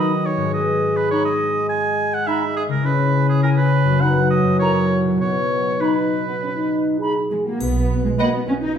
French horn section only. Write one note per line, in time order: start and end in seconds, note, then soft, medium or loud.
0.00 0.55 D#3 medium
0.53 2.69 G#3 medium
2.86 4.00 C#4 medium
4.02 5.21 F#3 medium
5.21 5.74 B3 soft
5.81 6.23 D#4 medium
6.28 6.34 B3 soft
6.42 6.48 C#4 soft
6.56 7.00 D#4 soft
7.00 7.45 G#4 medium
7.47 7.61 F#4 soft
8.17 8.33 F#4 soft
8.17 8.34 D#5 soft